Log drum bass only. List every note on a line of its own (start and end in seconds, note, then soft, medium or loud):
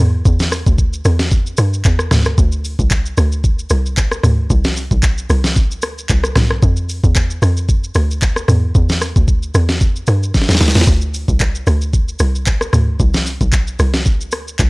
0.00 0.23 E2 loud
0.25 0.63 E2 loud
0.67 1.02 D2 medium
1.05 1.54 E2 loud
1.58 1.83 G2 medium
1.85 2.09 E2 loud
2.11 2.36 D2 medium
2.38 2.76 D2 loud
2.79 3.15 C2 medium
3.18 3.67 D2 loud
3.71 4.20 C2 loud
4.24 4.48 D2 loud
4.50 4.88 C2 loud
4.91 5.27 B1 medium
5.30 5.84 C2 medium
5.83 6.07 D2 medium
6.10 6.34 C2 medium
6.36 6.60 B1 medium
6.62 7.01 F2 loud
7.04 7.39 E2 loud
7.42 7.91 F2 medium
7.95 8.44 D2 medium
8.48 8.73 E2 loud
8.75 9.13 E2 loud
9.16 9.52 D2 medium
9.55 10.04 E2 loud
10.08 10.32 G2 medium
10.49 10.60 E2 medium
10.61 10.74 D2 medium
10.75 10.86 E2 medium
10.87 11.25 D2 loud
11.28 11.64 C2 medium
11.67 12.16 D2 loud
12.20 12.69 C2 loud
12.73 12.98 D2 loud
13.00 13.38 C2 loud
13.41 13.76 B1 medium
13.79 14.34 C2 medium
14.32 14.57 D2 medium
14.59 14.70 C2 medium